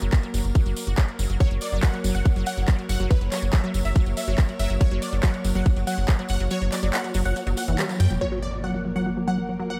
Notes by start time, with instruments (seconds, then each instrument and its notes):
Already playing: ambient pad A#3 A#4
0.02 analog synth bass F#1, synth arpeggio sound F#3, closed hi-hat, tambourine
0.12 kick, clap, closed hi-hat, tambourine
0.23 synth arpeggio sound F#3, closed hi-hat
0.34 analog synth bass F#1, synth arpeggio sound F#3, open hi-hat, tambourine
0.45 analog synth bass F#1, closed hi-hat, tambourine
0.55 synth arpeggio sound F#3, kick, closed hi-hat, tambourine
0.66 analog synth bass F#1, synth arpeggio sound F#3, closed hi-hat, tambourine
0.77 open hi-hat, tambourine
0.87 analog synth bass F#1, synth arpeggio sound F#4, closed hi-hat, tambourine
0.98 synth arpeggio sound F#3, kick, clap, closed hi-hat, tambourine
1.08 closed hi-hat
1.19 analog synth bass F#1, synth arpeggio sound F#3, open hi-hat, tambourine
1.30 analog synth bass F#1, synth arpeggio sound F#3, closed hi-hat, tambourine
1.40 synth arpeggio sound F#3, ambient pad C#5, supersaw synth C#5, kick, closed hi-hat, tambourine
1.51 analog synth bass F#1, synth arpeggio sound F#3, closed hi-hat
1.61 synth arpeggio sound F#3, supersaw synth D5, open hi-hat, tambourine
1.72 analog synth bass F#1, synth arpeggio sound F#3, closed hi-hat, tambourine
1.82 synth arpeggio sound F#3, supersaw synth F#5, kick, clap, closed hi-hat, tambourine
1.94 synth arpeggio sound F#3, closed hi-hat
2.04 analog synth bass F#1, synth arpeggio sound F#3, open hi-hat, tambourine
2.14 analog synth bass F#1, synth arpeggio sound F#3, supersaw synth F#5, closed hi-hat, tambourine
2.25 synth arpeggio sound F#3, kick, closed hi-hat, tambourine
2.36 analog synth bass F#1, synth arpeggio sound F#3, closed hi-hat, tambourine
2.46 synth arpeggio sound F#3, supersaw synth F#5, open hi-hat, tambourine
2.57 analog synth bass F#1, synth arpeggio sound F#3, closed hi-hat, tambourine
2.68 synth arpeggio sound F#3, kick, clap, closed hi-hat, tambourine
2.79 synth arpeggio sound F#3, closed hi-hat
2.89 analog synth bass F#1, synth arpeggio sound F#3, supersaw synth F#5, open hi-hat, tambourine
3.00 analog synth bass F#1, synth arpeggio sound F#3, closed hi-hat, tambourine
3.10 synth arpeggio sound F#3, supersaw synth B4, kick, closed hi-hat, tambourine
3.21 analog synth bass F#1, synth arpeggio sound F#3, closed hi-hat
3.32 synth arpeggio sound F#3, supersaw synth C#5, clap, open hi-hat, tambourine
3.42 analog synth bass F#1, synth arpeggio sound F#3, closed hi-hat, tambourine
3.53 synth arpeggio sound F#3, supersaw synth E5, kick, clap, closed hi-hat, tambourine
3.64 synth arpeggio sound F#3, closed hi-hat
3.74 analog synth bass F#1, synth arpeggio sound F#3, open hi-hat, tambourine
3.85 analog synth bass F#1, synth arpeggio sound F#3, supersaw synth E5, closed hi-hat, tambourine
3.95 synth arpeggio sound F#3, kick, closed hi-hat, tambourine
4.06 analog synth bass F#1, synth arpeggio sound F#3, closed hi-hat, tambourine
4.17 synth arpeggio sound F#3, supersaw synth E5, open hi-hat, tambourine
4.28 analog synth bass F#1, synth arpeggio sound F#3, closed hi-hat, tambourine
4.38 synth arpeggio sound F#3, kick, clap, closed hi-hat, tambourine
4.49 synth arpeggio sound F#3, closed hi-hat
4.59 analog synth bass F#1, synth arpeggio sound F#3, supersaw synth E5, open hi-hat, tambourine
4.70 analog synth bass F#1, synth arpeggio sound F#3, closed hi-hat, tambourine
4.81 synth arpeggio sound F#3, supersaw synth C#5, kick, closed hi-hat, tambourine
4.91 analog synth bass F#1, synth arpeggio sound F#3, closed hi-hat
5.02 synth arpeggio sound F#3, supersaw synth D5, open hi-hat, tambourine
5.13 analog synth bass F#1, synth arpeggio sound F#3, closed hi-hat, tambourine
5.23 synth arpeggio sound F#3, supersaw synth F#5, kick, clap, closed hi-hat, tambourine
5.34 synth arpeggio sound F#3, closed hi-hat
5.44 analog synth bass F#1, synth arpeggio sound F#3, open hi-hat, tambourine
5.55 analog synth bass F#1, synth arpeggio sound F#3, supersaw synth F#5, closed hi-hat, tambourine
5.66 synth arpeggio sound F#3, kick, closed hi-hat, tambourine
5.76 analog synth bass F#1, synth arpeggio sound F#3, closed hi-hat, tambourine
5.87 synth arpeggio sound F#3, supersaw synth F#5, open hi-hat, tambourine
5.98 analog synth bass F#1, synth arpeggio sound F#3, closed hi-hat, tambourine
6.08 synth arpeggio sound F#3, kick, clap, closed hi-hat, tambourine
6.19 synth arpeggio sound F#3, closed hi-hat
6.29 analog synth bass F#1, synth arpeggio sound F#3, supersaw synth F#5, open hi-hat, tambourine
6.40 analog synth bass F#1, synth arpeggio sound F#3, closed hi-hat, tambourine
6.50 synth arpeggio sound F#3, supersaw synth C#5, closed hi-hat, tambourine
6.62 analog synth bass F#1, synth arpeggio sound F#3, closed hi-hat, tambourine
6.72 synth arpeggio sound F#3, supersaw synth D5, clap, open hi-hat, tambourine
6.82 analog synth bass F#1, synth arpeggio sound F#3, closed hi-hat, tambourine
6.93 synth arpeggio sound F#3, supersaw synth F#5, clap, closed hi-hat, tambourine
7.04 synth arpeggio sound F#3, closed hi-hat, tambourine
7.14 analog synth bass F#1, synth arpeggio sound F#3, open hi-hat, tambourine
7.25 analog synth bass F#1, synth arpeggio sound F#3, supersaw synth F#5, closed hi-hat, tambourine
7.36 synth arpeggio sound F#3, closed hi-hat, tambourine
7.47 analog synth bass F#1, synth arpeggio sound F#3, closed hi-hat, tambourine
7.57 synth arpeggio sound F#3, supersaw synth F#5, open hi-hat, tambourine
7.68 analog synth bass F#1, synth arpeggio sound E3, closed hi-hat, tambourine
7.78 synth arpeggio sound G3, clap, closed hi-hat, tambourine
7.89 synth arpeggio sound F#3, closed hi-hat, tambourine
8.00 analog synth bass F#2, synth arpeggio sound F#3, supersaw synth G5, open hi-hat, tambourine
8.10 analog synth bass E1, synth arpeggio sound F#3, closed hi-hat, tambourine
8.21 synth arpeggio sound F#3, ambient pad A#3 A#4, supersaw synth C#5, impact
8.32 synth arpeggio sound F#3
8.42 synth arpeggio sound F#3, supersaw synth D5
8.53 synth arpeggio sound F#3
8.64 synth arpeggio sound F#3, supersaw synth F#5
8.74 synth arpeggio sound F#3
8.85 synth arpeggio sound F#3
8.96 synth arpeggio sound F#3, supersaw synth F#5
9.06 synth arpeggio sound F#3
9.17 synth arpeggio sound F#3
9.28 synth arpeggio sound F#3, supersaw synth F#5
9.38 synth arpeggio sound F#3
9.49 synth arpeggio sound F#3
9.60 synth arpeggio sound F#3
9.70 synth arpeggio sound F#3, supersaw synth F#5